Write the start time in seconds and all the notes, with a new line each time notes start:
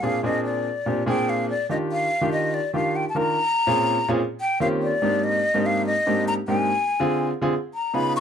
0.03 A#2 C4 D4 G#4 F5
0.23 A#2 C4 D4 G#4 D#5
0.45 D5
0.86 A#2 C4 D4 G4
1.06 A#2 C4 D4 G#4 G5
1.29 F5
1.50 D5
1.69 D#3 D4 F4 G4 D#5
1.92 F5
2.21 D#3 D4 F4 G4
2.32 D#5
2.54 D5
2.74 D#3 D4 F4 G4 F5
2.96 G5
3.09 A5
3.15 D#3 D4 F4 A#4 A#5
3.67 A#2 C4 C#4 F4 G#4
4.08 A#2 C4 C#4 F4 G#4
4.41 G5
4.60 D#3 A#3 C4 C#4 F4 G4 F5
4.83 D5
5.02 G#2 A#3 C4 D4 D#4 G4
5.24 D#5
5.54 G#2 A#3 C4 D4 D#4 G4
5.66 F5
5.86 D#5
6.06 G#2 A#3 C4 D4 D#4 G4
6.28 A#5
6.48 G#2 A#3 C4 D4 D#4 G4 G#5
7.00 D3 C4 F4 G#4
7.41 D3 C4 F4 G#4
7.74 A#5
7.94 C#3 B3 D#4 F4 G#4 B5
8.16 C#6